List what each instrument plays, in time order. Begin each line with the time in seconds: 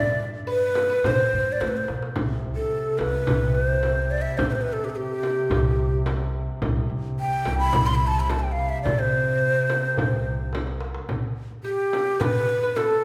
Already playing: upright bass G2, oud D5, ney D5
0.35 darbuka ka
0.47 oud B4, ney B4, darbuka ka
0.63 darbuka ka
0.75 darbuka tek, frame drum
0.90 oud B4
1.04 upright bass C3, oud C5, ney C5, frame drum, darbuka dum
1.19 darbuka ka
1.33 upright bass G2, darbuka ka
1.48 darbuka ka
1.52 ney D5
1.61 upright bass A2, ney C5, darbuka tek, frame drum
1.68 ney B4
1.74 ney C5, darbuka ka
1.88 upright bass B2, darbuka tek
2.03 darbuka ka
2.14 upright bass C2, duduk C3, frame drum, darbuka dum
2.44 upright bass C2
2.56 ney A4
2.88 darbuka ka
2.98 upright bass C2, ney B4, darbuka tek, frame drum
3.16 darbuka ka
3.27 upright bass C2, frame drum, darbuka dum
3.44 darbuka ka
3.55 ney C5
3.83 darbuka tek, frame drum
4.11 ney D5
4.22 ney E5
4.38 upright bass C3, ney C5, frame drum
4.42 darbuka dum
4.49 ney B4 C5
4.55 ney C5
4.61 ney B4
4.73 ney A4
4.84 ney G4
4.89 ney A4
4.96 ney G4
5.23 frame drum
5.39 darbuka ka
5.50 upright bass C2, frame drum, darbuka dum
5.66 darbuka ka
6.06 darbuka tek, frame drum
6.21 darbuka ka
6.62 upright bass C2, duduk C3, frame drum, darbuka dum
6.90 upright bass C2
7.20 ney G5
7.45 upright bass C2, darbuka tek, frame drum
7.59 ney B5, darbuka ka
7.73 upright bass C2, frame drum, darbuka dum
7.87 ney C6, darbuka ka
7.95 ney B5
8.07 ney A5
8.20 ney B5
8.30 ney A5, darbuka tek, frame drum
8.39 ney G5
8.45 darbuka ka
8.52 ney F5
8.69 ney E5
8.83 upright bass C3, ney D5, frame drum, darbuka dum
8.99 ney C5, darbuka ka
9.43 darbuka ka
9.56 darbuka ka
9.70 darbuka tek, frame drum
9.85 darbuka ka
9.97 upright bass C2, darbuka dum, frame drum
10.26 darbuka ka
10.40 darbuka ka
10.53 darbuka tek, frame drum
10.67 darbuka ka
10.81 darbuka tek
10.95 darbuka ka
11.09 frame drum, darbuka dum
11.23 darbuka ka
11.51 darbuka ka
11.64 ney G4, oud G4, darbuka ka
11.79 darbuka ka
11.93 darbuka tek, frame drum
12.07 darbuka ka
12.20 oud B4, ney B4, darbuka dum, frame drum
12.36 darbuka ka
12.63 oud B4, darbuka ka
12.76 oud A4, ney A4, darbuka tek, frame drum
12.93 darbuka ka